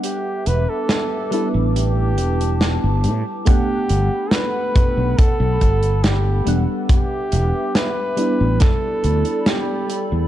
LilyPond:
<<
  \new Staff \with { instrumentName = "Ambient pad" } { \time 4/4 \key g \major \tempo 4 = 70 << { <b' d'''>1 | <a' b''>2.~ <a' b''>8 <b' d'''>8~ | <b' d'''>4. <a' b''>2~ <a' b''>8 | } \\ { e''4. a''2~ a''8 | fis''2.~ fis''8 e''8~ | e''4. d''2~ d''8 | } >> }
  \new Staff \with { instrumentName = "Flugelhorn" } { \time 4/4 \key g \major g'8 b'16 a'8. a'8 g'4. r8 | g'4 b'4 a'4 g'8. r16 | g'4 b'4 a'4 g'8. r16 | }
  \new Staff \with { instrumentName = "FM electric piano" } { \time 4/4 \key g \major <g b d' fis''>4. <g b d' e'>2~ <g b d' e'>8 | <a b d' fis''>2.~ <a b d' fis''>8 <g b d' fis''>8~ | <g b d' fis''>4. <g b d' e'>2~ <g b d' e'>8 | }
  \new Staff \with { instrumentName = "Fretless electric bass" } { \clef bass \time 4/4 \key g \major r8 e,,16 r4 a,,8. e,,8. g,,16 a,16 r16 | r8 g,,16 r4 b,,16 r16 b,,16 g,,4 e,,16 r16 | r8 e,,16 r4 a,,16 r8 d,16 r4 e,16 | }
  \new DrumStaff \with { instrumentName = "Drums" } \drummode { \time 4/4 hh8 hh8 <hh sn>8 hh8 hh8 hh16 hh16 <hh sn>8 hh8 | <hh bd>8 hh8 <hh sn>8 <hh bd>8 <hh bd>8 <hh bd>16 hh16 <hh sn>8 hh8 | <hh bd>8 hh8 <hh sn>8 hh8 <hh bd sn>8 hh16 hh16 <hh sn>8 hh8 | }
>>